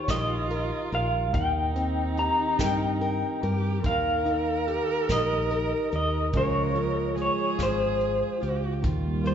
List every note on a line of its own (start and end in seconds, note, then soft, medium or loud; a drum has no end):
0.00 1.33 D#3 medium
0.00 1.75 D#4 medium
0.00 1.35 F4 medium
0.00 2.18 G4 medium
0.08 0.71 A#1 medium
0.08 0.51 A#4 medium
0.08 0.89 D#5 medium
0.08 kick medium
0.08 snare medium
0.08 closed hi-hat medium
0.50 0.93 A#4 medium
0.50 closed hi-hat soft
0.92 1.34 A#1 medium
0.92 1.79 A#4 medium
0.92 1.35 F5 medium
0.92 closed hi-hat soft
1.34 2.28 D#2 medium
1.34 3.83 D#3 medium
1.34 3.44 D#4 medium
1.34 2.19 G5 medium
1.34 kick medium
1.34 closed hi-hat medium
1.75 3.79 C4 medium
1.75 closed hi-hat medium
2.17 3.80 G4 medium
2.17 2.57 A#5 medium
2.17 closed hi-hat soft
2.58 3.22 G2 medium
2.58 3.00 A#4 medium
2.58 3.86 G5 loud
2.58 kick medium
2.58 snare medium
2.58 closed hi-hat medium
3.01 3.43 A#4 medium
3.01 closed hi-hat medium
3.42 3.84 G2 medium
3.42 3.82 G4 loud
3.42 3.80 A#4 medium
3.42 closed hi-hat medium
3.83 4.79 D#2 loud
3.83 6.34 D#3 medium
3.83 6.30 A#4 loud
3.83 5.12 F5 loud
3.83 kick medium
3.83 closed hi-hat medium
4.25 6.29 D#4 medium
4.25 closed hi-hat soft
4.67 6.29 G4 medium
4.67 closed hi-hat medium
5.08 5.72 A#1 medium
5.08 5.50 A#4 medium
5.08 kick medium
5.08 snare medium
5.08 closed hi-hat medium
5.12 5.90 D#5 medium
5.50 5.92 A#4 medium
5.50 closed hi-hat soft
5.92 6.33 D#2 medium
5.92 6.29 A#4 medium
5.92 6.37 D#5 medium
5.92 closed hi-hat soft
6.33 7.28 C#2 medium
6.33 6.76 C#3 medium
6.33 6.73 F3 medium
6.33 7.16 G#3 medium
6.33 7.57 F4 medium
6.33 7.18 A#4 loud
6.33 kick medium
6.33 closed hi-hat medium
6.37 8.02 G#4 medium
6.37 7.21 C#5 medium
6.75 8.79 F3 medium
6.75 closed hi-hat soft
7.16 8.84 G#3 medium
7.16 8.44 G#4 loud
7.16 closed hi-hat soft
7.22 7.59 C#5 medium
7.59 8.22 G#1 medium
7.59 8.40 F4 medium
7.59 kick medium
7.59 snare medium
7.59 closed hi-hat medium
7.63 8.51 C5 medium
8.01 closed hi-hat soft
8.41 8.84 C#2 medium
8.41 8.79 F4 medium
8.41 8.86 G4 medium
8.41 closed hi-hat soft
8.82 9.34 D#2 medium
8.82 9.34 D#3 medium
8.82 9.34 G3 medium
8.82 9.34 A#3 medium
8.82 9.34 F4 medium
8.82 9.34 G4 medium
8.82 kick medium
8.82 closed hi-hat medium
9.24 9.34 A#3 medium
9.24 9.34 C5 medium
9.24 closed hi-hat soft